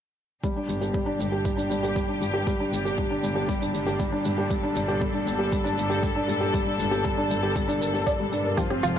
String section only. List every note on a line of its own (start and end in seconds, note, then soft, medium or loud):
0.44 8.54 A#2 medium
0.44 8.54 D3 medium
0.44 8.54 G3 medium
0.44 8.54 D4 medium
0.44 4.47 G4 medium
4.51 8.54 A4 medium
8.57 8.99 A2 medium
8.57 8.99 C3 medium
8.57 8.99 F3 medium
8.57 8.99 C4 medium
8.57 8.99 F4 medium